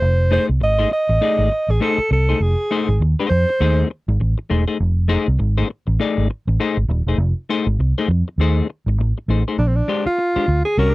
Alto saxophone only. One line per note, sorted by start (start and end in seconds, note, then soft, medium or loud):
0.00 0.29 C5 medium
0.33 0.46 C5 loud
0.63 0.90 D#5 loud
0.93 1.72 D#5 loud
1.71 1.82 G#4 medium
1.82 2.10 A4 medium
2.12 2.43 A4 medium
2.42 3.01 G#4 medium
3.29 3.86 C5 loud
9.58 9.69 D4 medium
9.67 9.77 C4 medium
9.76 10.06 D4 medium
10.06 10.62 F4 medium
10.65 10.80 G#4 loud
10.78 10.95 A#4 loud